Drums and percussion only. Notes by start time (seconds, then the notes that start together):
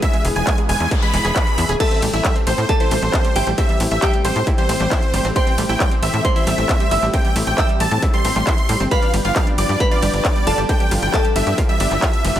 0.02 kick, closed hi-hat
0.14 closed hi-hat
0.25 open hi-hat
0.36 closed hi-hat
0.47 kick, clap, closed hi-hat
0.58 closed hi-hat
0.69 open hi-hat
0.80 closed hi-hat
0.91 kick, closed hi-hat
1.02 closed hi-hat
1.14 open hi-hat
1.25 clap, closed hi-hat
1.36 kick, clap, closed hi-hat
1.47 closed hi-hat
1.58 open hi-hat
1.69 closed hi-hat
1.80 kick, closed hi-hat, crash
1.91 closed hi-hat
2.02 open hi-hat, ride
2.13 closed hi-hat
2.25 kick, clap, closed hi-hat
2.36 closed hi-hat
2.47 open hi-hat, ride
2.58 closed hi-hat
2.69 kick, closed hi-hat
2.80 closed hi-hat
2.91 open hi-hat, ride
3.02 closed hi-hat
3.13 kick, clap, closed hi-hat
3.25 closed hi-hat
3.36 open hi-hat, ride
3.47 closed hi-hat
3.58 kick, closed hi-hat
3.69 closed hi-hat
3.80 open hi-hat, ride
3.91 closed hi-hat
4.02 kick, clap, closed hi-hat
4.14 closed hi-hat
4.25 open hi-hat, ride
4.36 closed hi-hat
4.47 kick, closed hi-hat
4.58 closed hi-hat
4.69 open hi-hat, ride
4.80 clap, closed hi-hat
4.91 kick, clap, closed hi-hat
5.03 closed hi-hat
5.14 open hi-hat, ride
5.25 closed hi-hat
5.36 kick, closed hi-hat
5.47 closed hi-hat
5.58 open hi-hat, ride
5.69 closed hi-hat
5.80 kick, clap, closed hi-hat
5.91 closed hi-hat
6.03 open hi-hat, ride
6.14 closed hi-hat
6.25 kick, closed hi-hat
6.36 closed hi-hat
6.47 open hi-hat, ride
6.58 closed hi-hat
6.69 kick, clap, closed hi-hat
6.80 closed hi-hat
6.91 open hi-hat, ride
7.02 closed hi-hat
7.14 kick, closed hi-hat
7.25 closed hi-hat
7.36 open hi-hat, ride
7.47 closed hi-hat
7.58 kick, clap, closed hi-hat
7.69 closed hi-hat
7.80 open hi-hat, ride
7.91 closed hi-hat
8.02 kick, closed hi-hat
8.14 closed hi-hat
8.25 open hi-hat, ride
8.36 clap, closed hi-hat
8.47 kick, clap, closed hi-hat
8.58 closed hi-hat
8.69 open hi-hat, ride
8.80 closed hi-hat
8.91 kick, closed hi-hat
9.02 closed hi-hat
9.14 open hi-hat, ride
9.25 closed hi-hat
9.36 kick, clap, closed hi-hat
9.47 closed hi-hat
9.58 open hi-hat, ride
9.69 closed hi-hat
9.80 kick, closed hi-hat
9.91 closed hi-hat
10.02 open hi-hat, ride
10.14 closed hi-hat
10.25 kick, clap, closed hi-hat
10.36 closed hi-hat
10.47 open hi-hat, ride
10.58 closed hi-hat
10.69 kick, closed hi-hat
10.80 closed hi-hat
10.91 open hi-hat, ride
11.02 closed hi-hat
11.14 kick, clap, closed hi-hat
11.25 closed hi-hat
11.36 open hi-hat, ride
11.47 closed hi-hat
11.58 kick, closed hi-hat
11.69 closed hi-hat
11.80 open hi-hat, ride
11.91 clap, closed hi-hat
12.02 kick, clap, closed hi-hat
12.13 closed hi-hat
12.25 open hi-hat, ride
12.36 closed hi-hat